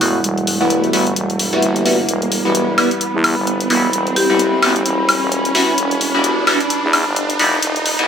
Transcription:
0.00 0.22 E1 medium
0.00 8.08 G3 medium
0.00 0.18 G3 medium
0.00 0.18 B3 medium
0.00 8.08 E4 medium
0.00 0.18 E4 medium
0.00 0.18 F#4 medium
0.00 2.07 F#5 medium
0.00 open hi-hat medium
0.00 riser medium
0.24 0.58 E1 medium
0.24 closed hi-hat medium
0.38 closed hi-hat soft
0.47 open hi-hat loud
0.60 0.92 E1 loud
0.60 0.91 G3 medium
0.60 0.91 B3 medium
0.60 0.91 E4 medium
0.60 0.91 F#4 medium
0.70 closed hi-hat medium
0.84 closed hi-hat soft
0.93 1.15 G1 loud
0.93 1.04 G3 loud
0.93 1.04 B3 medium
0.93 1.04 E4 medium
0.93 1.04 F#4 loud
0.93 open hi-hat medium
1.07 closed hi-hat soft
1.16 1.61 E1 medium
1.16 closed hi-hat medium
1.30 closed hi-hat soft
1.39 open hi-hat loud
1.53 1.83 G3 medium
1.53 1.83 B3 medium
1.53 1.83 E4 medium
1.53 1.83 F#4 medium
1.53 closed hi-hat soft
1.62 2.07 G1 medium
1.62 closed hi-hat medium
1.76 closed hi-hat soft
1.86 1.97 G3 medium
1.86 1.97 B3 medium
1.86 1.97 E4 medium
1.86 1.97 F#4 medium
1.86 open hi-hat medium
2.09 2.43 E1 medium
2.09 8.08 B5 medium
2.09 closed hi-hat medium
2.22 closed hi-hat soft
2.32 open hi-hat loud
2.45 2.89 E1 medium
2.45 2.76 G3 medium
2.45 2.76 B3 medium
2.45 2.76 E4 medium
2.45 2.76 F#4 medium
2.55 closed hi-hat medium
2.78 2.89 G3 loud
2.78 2.89 B3 medium
2.78 2.89 E4 medium
2.78 2.89 F#4 loud
2.78 open hi-hat medium
2.78 high woodblock medium
2.91 closed hi-hat soft
3.01 closed hi-hat medium
3.14 3.35 E2 loud
3.24 open hi-hat loud
3.24 high woodblock medium
3.37 3.69 G1 medium
3.47 closed hi-hat medium
3.60 closed hi-hat soft
3.70 3.92 E1 loud
3.70 3.87 G3 medium
3.70 3.87 B3 medium
3.70 3.87 E4 medium
3.70 3.87 F#4 medium
3.70 open hi-hat medium
3.93 4.28 E1 medium
3.93 closed hi-hat medium
4.07 closed hi-hat soft
4.16 4.25 G4 medium
4.16 open hi-hat medium
4.30 4.61 E1 loud
4.30 4.60 G3 medium
4.30 4.60 B3 medium
4.30 4.60 E4 medium
4.30 4.60 F#4 medium
4.30 4.36 G4 medium
4.39 closed hi-hat medium
4.62 4.84 G1 loud
4.62 4.74 G3 loud
4.62 4.74 B3 medium
4.62 4.74 E4 medium
4.62 4.74 F#4 loud
4.62 open hi-hat medium
4.62 high woodblock medium
4.76 closed hi-hat medium
4.86 5.20 E1 medium
4.86 closed hi-hat medium
5.09 open hi-hat loud
5.09 high woodblock medium
5.22 5.53 E1 loud
5.32 closed hi-hat medium
5.45 closed hi-hat medium
5.55 5.72 G3 medium
5.55 5.72 B3 medium
5.55 5.72 E4 medium
5.55 5.72 F#4 medium
5.55 open hi-hat medium
5.78 6.12 E1 medium
5.78 closed hi-hat medium
5.91 closed hi-hat soft
6.01 open hi-hat loud
6.14 6.58 E1 medium
6.14 6.45 G3 medium
6.14 6.45 B3 medium
6.14 6.45 E4 medium
6.14 6.45 F#4 medium
6.24 closed hi-hat medium
6.47 6.58 G3 loud
6.47 6.58 B3 medium
6.47 6.58 E4 medium
6.47 6.58 F#4 loud
6.47 open hi-hat medium
6.47 high woodblock medium
6.60 closed hi-hat medium
6.70 closed hi-hat medium
6.84 7.04 E2 loud
6.93 open hi-hat loud
6.93 high woodblock medium
7.07 7.38 G1 medium
7.16 closed hi-hat medium
7.30 closed hi-hat medium
7.39 7.61 E1 loud
7.39 7.56 G3 medium
7.39 7.56 B3 medium
7.39 7.56 E4 medium
7.39 7.56 F#4 loud
7.39 open hi-hat medium
7.62 7.97 E1 loud
7.62 closed hi-hat medium
7.76 closed hi-hat soft
7.86 open hi-hat loud
7.99 8.08 E1 loud
7.99 8.08 G3 medium
7.99 8.08 B3 medium
7.99 8.08 E4 medium
7.99 8.08 F#4 medium
7.99 closed hi-hat soft

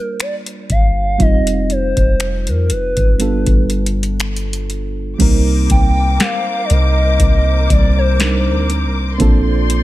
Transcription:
0.00 0.65 G3 medium
0.00 0.65 A#3 medium
0.00 0.66 D4 medium
0.00 0.66 F4 medium
0.00 0.21 A#4 medium
0.00 0.66 A#4 medium
0.20 0.36 D5 medium
0.20 finger snap loud
0.20 closed hi-hat medium
0.46 closed hi-hat medium
0.70 1.18 G1 loud
0.70 1.23 F5 loud
0.70 kick medium
0.70 closed hi-hat medium
1.18 1.94 F1 loud
1.18 3.15 G3 medium
1.18 3.15 C4 medium
1.18 3.16 D#4 medium
1.18 3.16 F4 medium
1.18 1.73 D#5 loud
1.18 kick loud
1.18 closed hi-hat medium
1.47 closed hi-hat medium
1.70 2.50 C5 medium
1.70 closed hi-hat soft
1.97 2.49 F1 loud
1.97 kick medium
1.97 closed hi-hat soft
2.20 finger snap loud
2.20 closed hi-hat medium
2.47 2.72 F2 medium
2.47 2.73 A#4 medium
2.47 closed hi-hat medium
2.70 2.96 F1 medium
2.70 4.21 B4 medium
2.70 closed hi-hat medium
2.97 3.45 G1 medium
2.97 kick medium
2.97 closed hi-hat soft
3.18 5.15 G3 medium
3.18 5.15 B3 medium
3.18 5.16 D4 medium
3.18 5.16 F4 medium
3.18 5.17 A4 medium
3.18 closed hi-hat medium
3.47 5.16 G1 loud
3.47 kick medium
3.47 closed hi-hat medium
3.70 closed hi-hat medium
3.86 closed hi-hat medium
4.03 closed hi-hat medium
4.20 finger snap loud
4.20 closed hi-hat medium
4.37 closed hi-hat medium
4.53 closed hi-hat medium
4.70 closed hi-hat medium
5.18 5.68 C2 loud
5.18 8.15 G3 medium
5.18 8.16 A#3 medium
5.18 8.15 C4 medium
5.18 8.16 D#4 medium
5.18 9.16 A#4 medium
5.18 8.17 A#4 medium
5.18 9.16 C5 medium
5.18 9.16 D6 medium
5.18 kick loud
5.18 closed hi-hat medium
5.18 crash medium
5.70 6.18 C2 medium
5.70 6.23 G5 loud
5.70 kick medium
5.70 closed hi-hat medium
6.20 6.66 F5 loud
6.20 snare loud
6.20 closed hi-hat medium
6.65 6.73 D5 medium
6.70 7.18 C2 loud
6.70 7.73 D#5 loud
6.70 closed hi-hat medium
7.20 7.68 C2 loud
7.20 kick medium
7.20 closed hi-hat medium
7.70 8.49 C2 loud
7.70 7.98 D5 medium
7.70 kick medium
7.70 closed hi-hat medium
7.98 8.67 C5 medium
8.19 9.19 G3 soft
8.19 9.18 C4 soft
8.19 9.19 D4 soft
8.19 9.20 D#4 soft
8.19 9.20 A#4 medium
8.19 snare loud
8.19 closed hi-hat medium
8.47 8.85 D2 medium
8.70 closed hi-hat medium
8.84 9.18 C2 loud
9.18 9.83 A#1 loud
9.18 9.83 A#3 medium
9.18 9.83 C4 medium
9.18 9.83 D4 medium
9.18 9.83 F4 medium
9.18 9.83 A4 medium
9.18 9.83 C5 medium
9.18 9.83 D5 medium
9.18 9.83 C6 medium
9.18 kick loud
9.18 closed hi-hat medium
9.70 closed hi-hat medium

